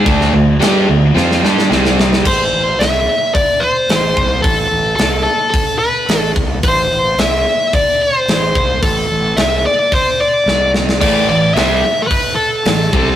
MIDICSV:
0, 0, Header, 1, 5, 480
1, 0, Start_track
1, 0, Key_signature, 0, "minor"
1, 0, Tempo, 547445
1, 52, Time_signature, 4, 2, 24, 8
1, 11536, End_track
2, 0, Start_track
2, 0, Title_t, "Lead electric guitar"
2, 0, Program_c, 0, 29
2, 1987, Note_on_c, 0, 72, 93
2, 2447, Note_on_c, 0, 76, 90
2, 2474, Note_off_c, 0, 72, 0
2, 2928, Note_off_c, 0, 76, 0
2, 2931, Note_on_c, 0, 74, 91
2, 3155, Note_on_c, 0, 72, 89
2, 3179, Note_off_c, 0, 74, 0
2, 3875, Note_off_c, 0, 72, 0
2, 3878, Note_on_c, 0, 69, 84
2, 4338, Note_off_c, 0, 69, 0
2, 4348, Note_on_c, 0, 69, 79
2, 4575, Note_off_c, 0, 69, 0
2, 4585, Note_on_c, 0, 69, 80
2, 4816, Note_off_c, 0, 69, 0
2, 4826, Note_on_c, 0, 69, 83
2, 5069, Note_off_c, 0, 69, 0
2, 5072, Note_on_c, 0, 71, 76
2, 5432, Note_off_c, 0, 71, 0
2, 5432, Note_on_c, 0, 69, 76
2, 5529, Note_off_c, 0, 69, 0
2, 5820, Note_on_c, 0, 72, 95
2, 6303, Note_on_c, 0, 76, 90
2, 6312, Note_off_c, 0, 72, 0
2, 6789, Note_off_c, 0, 76, 0
2, 6793, Note_on_c, 0, 74, 100
2, 7031, Note_off_c, 0, 74, 0
2, 7034, Note_on_c, 0, 72, 88
2, 7737, Note_off_c, 0, 72, 0
2, 7740, Note_on_c, 0, 69, 89
2, 8213, Note_on_c, 0, 76, 92
2, 8232, Note_off_c, 0, 69, 0
2, 8461, Note_off_c, 0, 76, 0
2, 8470, Note_on_c, 0, 74, 84
2, 8709, Note_on_c, 0, 72, 87
2, 8710, Note_off_c, 0, 74, 0
2, 8945, Note_on_c, 0, 74, 87
2, 8950, Note_off_c, 0, 72, 0
2, 9387, Note_off_c, 0, 74, 0
2, 9650, Note_on_c, 0, 74, 104
2, 9876, Note_off_c, 0, 74, 0
2, 9896, Note_on_c, 0, 74, 85
2, 10114, Note_off_c, 0, 74, 0
2, 10117, Note_on_c, 0, 76, 94
2, 10541, Note_on_c, 0, 69, 70
2, 10559, Note_off_c, 0, 76, 0
2, 10579, Note_off_c, 0, 69, 0
2, 10583, Note_on_c, 0, 71, 96
2, 10828, Note_off_c, 0, 71, 0
2, 10831, Note_on_c, 0, 69, 92
2, 11535, Note_off_c, 0, 69, 0
2, 11536, End_track
3, 0, Start_track
3, 0, Title_t, "Distorted electric guitar"
3, 0, Program_c, 1, 30
3, 48, Note_on_c, 1, 50, 86
3, 51, Note_on_c, 1, 57, 89
3, 58, Note_on_c, 1, 62, 104
3, 278, Note_off_c, 1, 50, 0
3, 284, Note_off_c, 1, 57, 0
3, 288, Note_off_c, 1, 62, 0
3, 288, Note_on_c, 1, 50, 66
3, 295, Note_on_c, 1, 57, 64
3, 482, Note_off_c, 1, 50, 0
3, 485, Note_off_c, 1, 57, 0
3, 524, Note_on_c, 1, 55, 89
3, 529, Note_on_c, 1, 62, 95
3, 536, Note_on_c, 1, 67, 90
3, 760, Note_off_c, 1, 55, 0
3, 763, Note_off_c, 1, 62, 0
3, 766, Note_off_c, 1, 67, 0
3, 770, Note_on_c, 1, 50, 56
3, 772, Note_on_c, 1, 57, 67
3, 963, Note_off_c, 1, 50, 0
3, 964, Note_off_c, 1, 57, 0
3, 1003, Note_on_c, 1, 53, 101
3, 1010, Note_on_c, 1, 60, 96
3, 1016, Note_on_c, 1, 65, 101
3, 1240, Note_off_c, 1, 53, 0
3, 1244, Note_off_c, 1, 60, 0
3, 1246, Note_off_c, 1, 65, 0
3, 1251, Note_on_c, 1, 55, 80
3, 1260, Note_on_c, 1, 62, 91
3, 1262, Note_on_c, 1, 67, 98
3, 1484, Note_off_c, 1, 55, 0
3, 1489, Note_off_c, 1, 62, 0
3, 1490, Note_off_c, 1, 67, 0
3, 1497, Note_on_c, 1, 48, 88
3, 1501, Note_on_c, 1, 55, 101
3, 1511, Note_on_c, 1, 60, 101
3, 1967, Note_off_c, 1, 48, 0
3, 1969, Note_off_c, 1, 55, 0
3, 1974, Note_off_c, 1, 60, 0
3, 9651, Note_on_c, 1, 45, 81
3, 9659, Note_on_c, 1, 52, 82
3, 9661, Note_on_c, 1, 57, 86
3, 9886, Note_off_c, 1, 45, 0
3, 9890, Note_off_c, 1, 52, 0
3, 9891, Note_off_c, 1, 57, 0
3, 9900, Note_on_c, 1, 45, 54
3, 9909, Note_on_c, 1, 52, 72
3, 10090, Note_off_c, 1, 45, 0
3, 10094, Note_off_c, 1, 52, 0
3, 10133, Note_on_c, 1, 48, 83
3, 10146, Note_on_c, 1, 55, 76
3, 10149, Note_on_c, 1, 60, 87
3, 10367, Note_off_c, 1, 48, 0
3, 10374, Note_off_c, 1, 55, 0
3, 10375, Note_off_c, 1, 60, 0
3, 11099, Note_on_c, 1, 45, 55
3, 11106, Note_on_c, 1, 52, 64
3, 11289, Note_off_c, 1, 45, 0
3, 11293, Note_off_c, 1, 52, 0
3, 11340, Note_on_c, 1, 48, 88
3, 11348, Note_on_c, 1, 55, 88
3, 11349, Note_on_c, 1, 60, 93
3, 11536, Note_off_c, 1, 48, 0
3, 11536, Note_off_c, 1, 55, 0
3, 11536, Note_off_c, 1, 60, 0
3, 11536, End_track
4, 0, Start_track
4, 0, Title_t, "Fingered electric bass"
4, 0, Program_c, 2, 33
4, 54, Note_on_c, 2, 38, 86
4, 276, Note_off_c, 2, 38, 0
4, 293, Note_on_c, 2, 38, 89
4, 515, Note_off_c, 2, 38, 0
4, 532, Note_on_c, 2, 43, 88
4, 755, Note_off_c, 2, 43, 0
4, 772, Note_on_c, 2, 38, 81
4, 995, Note_off_c, 2, 38, 0
4, 1008, Note_on_c, 2, 41, 94
4, 1233, Note_off_c, 2, 41, 0
4, 1251, Note_on_c, 2, 43, 90
4, 1475, Note_off_c, 2, 43, 0
4, 1495, Note_on_c, 2, 36, 88
4, 1940, Note_off_c, 2, 36, 0
4, 1976, Note_on_c, 2, 33, 72
4, 2197, Note_off_c, 2, 33, 0
4, 2214, Note_on_c, 2, 33, 77
4, 2436, Note_off_c, 2, 33, 0
4, 2448, Note_on_c, 2, 36, 83
4, 2673, Note_off_c, 2, 36, 0
4, 3412, Note_on_c, 2, 33, 67
4, 3635, Note_off_c, 2, 33, 0
4, 3657, Note_on_c, 2, 36, 87
4, 3878, Note_off_c, 2, 36, 0
4, 3895, Note_on_c, 2, 33, 79
4, 4117, Note_off_c, 2, 33, 0
4, 4126, Note_on_c, 2, 33, 80
4, 4353, Note_off_c, 2, 33, 0
4, 4370, Note_on_c, 2, 36, 86
4, 4595, Note_off_c, 2, 36, 0
4, 5335, Note_on_c, 2, 33, 73
4, 5558, Note_off_c, 2, 33, 0
4, 5579, Note_on_c, 2, 36, 92
4, 5800, Note_off_c, 2, 36, 0
4, 5815, Note_on_c, 2, 33, 79
4, 6038, Note_off_c, 2, 33, 0
4, 6057, Note_on_c, 2, 33, 79
4, 6279, Note_off_c, 2, 33, 0
4, 6295, Note_on_c, 2, 36, 87
4, 6518, Note_off_c, 2, 36, 0
4, 7262, Note_on_c, 2, 33, 71
4, 7482, Note_off_c, 2, 33, 0
4, 7501, Note_on_c, 2, 36, 91
4, 7721, Note_off_c, 2, 36, 0
4, 7736, Note_on_c, 2, 33, 80
4, 7959, Note_off_c, 2, 33, 0
4, 7981, Note_on_c, 2, 33, 73
4, 8201, Note_off_c, 2, 33, 0
4, 8217, Note_on_c, 2, 36, 86
4, 8439, Note_off_c, 2, 36, 0
4, 9172, Note_on_c, 2, 36, 88
4, 9620, Note_off_c, 2, 36, 0
4, 9659, Note_on_c, 2, 33, 75
4, 9881, Note_off_c, 2, 33, 0
4, 9894, Note_on_c, 2, 33, 81
4, 10118, Note_off_c, 2, 33, 0
4, 10131, Note_on_c, 2, 36, 88
4, 10356, Note_off_c, 2, 36, 0
4, 11098, Note_on_c, 2, 33, 72
4, 11320, Note_off_c, 2, 33, 0
4, 11337, Note_on_c, 2, 36, 91
4, 11536, Note_off_c, 2, 36, 0
4, 11536, End_track
5, 0, Start_track
5, 0, Title_t, "Drums"
5, 54, Note_on_c, 9, 36, 108
5, 54, Note_on_c, 9, 49, 59
5, 142, Note_off_c, 9, 36, 0
5, 142, Note_off_c, 9, 49, 0
5, 184, Note_on_c, 9, 38, 33
5, 272, Note_off_c, 9, 38, 0
5, 540, Note_on_c, 9, 49, 62
5, 549, Note_on_c, 9, 38, 113
5, 628, Note_off_c, 9, 49, 0
5, 636, Note_off_c, 9, 38, 0
5, 1026, Note_on_c, 9, 38, 57
5, 1114, Note_off_c, 9, 38, 0
5, 1153, Note_on_c, 9, 38, 53
5, 1240, Note_off_c, 9, 38, 0
5, 1268, Note_on_c, 9, 38, 77
5, 1356, Note_off_c, 9, 38, 0
5, 1391, Note_on_c, 9, 38, 72
5, 1479, Note_off_c, 9, 38, 0
5, 1509, Note_on_c, 9, 38, 88
5, 1596, Note_off_c, 9, 38, 0
5, 1626, Note_on_c, 9, 38, 78
5, 1713, Note_off_c, 9, 38, 0
5, 1749, Note_on_c, 9, 38, 90
5, 1837, Note_off_c, 9, 38, 0
5, 1867, Note_on_c, 9, 38, 93
5, 1954, Note_off_c, 9, 38, 0
5, 1976, Note_on_c, 9, 36, 94
5, 1976, Note_on_c, 9, 57, 102
5, 2063, Note_off_c, 9, 57, 0
5, 2064, Note_off_c, 9, 36, 0
5, 2459, Note_on_c, 9, 46, 51
5, 2467, Note_on_c, 9, 38, 102
5, 2546, Note_off_c, 9, 46, 0
5, 2555, Note_off_c, 9, 38, 0
5, 2936, Note_on_c, 9, 36, 96
5, 2938, Note_on_c, 9, 46, 46
5, 3023, Note_off_c, 9, 36, 0
5, 3026, Note_off_c, 9, 46, 0
5, 3413, Note_on_c, 9, 46, 55
5, 3422, Note_on_c, 9, 38, 108
5, 3501, Note_off_c, 9, 46, 0
5, 3510, Note_off_c, 9, 38, 0
5, 3655, Note_on_c, 9, 36, 86
5, 3742, Note_off_c, 9, 36, 0
5, 3894, Note_on_c, 9, 36, 108
5, 3894, Note_on_c, 9, 46, 52
5, 3982, Note_off_c, 9, 36, 0
5, 3982, Note_off_c, 9, 46, 0
5, 4372, Note_on_c, 9, 46, 51
5, 4380, Note_on_c, 9, 38, 111
5, 4459, Note_off_c, 9, 46, 0
5, 4468, Note_off_c, 9, 38, 0
5, 4855, Note_on_c, 9, 36, 93
5, 4857, Note_on_c, 9, 46, 48
5, 4943, Note_off_c, 9, 36, 0
5, 4945, Note_off_c, 9, 46, 0
5, 5337, Note_on_c, 9, 46, 53
5, 5346, Note_on_c, 9, 38, 106
5, 5425, Note_off_c, 9, 46, 0
5, 5434, Note_off_c, 9, 38, 0
5, 5577, Note_on_c, 9, 36, 87
5, 5664, Note_off_c, 9, 36, 0
5, 5814, Note_on_c, 9, 46, 60
5, 5817, Note_on_c, 9, 36, 100
5, 5902, Note_off_c, 9, 46, 0
5, 5904, Note_off_c, 9, 36, 0
5, 6300, Note_on_c, 9, 46, 59
5, 6309, Note_on_c, 9, 38, 106
5, 6388, Note_off_c, 9, 46, 0
5, 6396, Note_off_c, 9, 38, 0
5, 6781, Note_on_c, 9, 36, 89
5, 6783, Note_on_c, 9, 46, 48
5, 6869, Note_off_c, 9, 36, 0
5, 6871, Note_off_c, 9, 46, 0
5, 7263, Note_on_c, 9, 46, 49
5, 7271, Note_on_c, 9, 38, 104
5, 7350, Note_off_c, 9, 46, 0
5, 7359, Note_off_c, 9, 38, 0
5, 7500, Note_on_c, 9, 36, 95
5, 7588, Note_off_c, 9, 36, 0
5, 7739, Note_on_c, 9, 36, 96
5, 7741, Note_on_c, 9, 46, 53
5, 7827, Note_off_c, 9, 36, 0
5, 7829, Note_off_c, 9, 46, 0
5, 8218, Note_on_c, 9, 46, 54
5, 8226, Note_on_c, 9, 38, 106
5, 8305, Note_off_c, 9, 46, 0
5, 8314, Note_off_c, 9, 38, 0
5, 8698, Note_on_c, 9, 36, 91
5, 8701, Note_on_c, 9, 46, 48
5, 8786, Note_off_c, 9, 36, 0
5, 8788, Note_off_c, 9, 46, 0
5, 9187, Note_on_c, 9, 38, 61
5, 9275, Note_off_c, 9, 38, 0
5, 9421, Note_on_c, 9, 38, 72
5, 9508, Note_off_c, 9, 38, 0
5, 9547, Note_on_c, 9, 38, 86
5, 9635, Note_off_c, 9, 38, 0
5, 9657, Note_on_c, 9, 36, 99
5, 9660, Note_on_c, 9, 46, 55
5, 9660, Note_on_c, 9, 49, 89
5, 9745, Note_off_c, 9, 36, 0
5, 9748, Note_off_c, 9, 46, 0
5, 9748, Note_off_c, 9, 49, 0
5, 10139, Note_on_c, 9, 46, 58
5, 10148, Note_on_c, 9, 38, 113
5, 10227, Note_off_c, 9, 46, 0
5, 10236, Note_off_c, 9, 38, 0
5, 10615, Note_on_c, 9, 46, 53
5, 10616, Note_on_c, 9, 36, 91
5, 10703, Note_off_c, 9, 46, 0
5, 10704, Note_off_c, 9, 36, 0
5, 11095, Note_on_c, 9, 46, 53
5, 11104, Note_on_c, 9, 38, 106
5, 11183, Note_off_c, 9, 46, 0
5, 11192, Note_off_c, 9, 38, 0
5, 11338, Note_on_c, 9, 36, 98
5, 11425, Note_off_c, 9, 36, 0
5, 11536, End_track
0, 0, End_of_file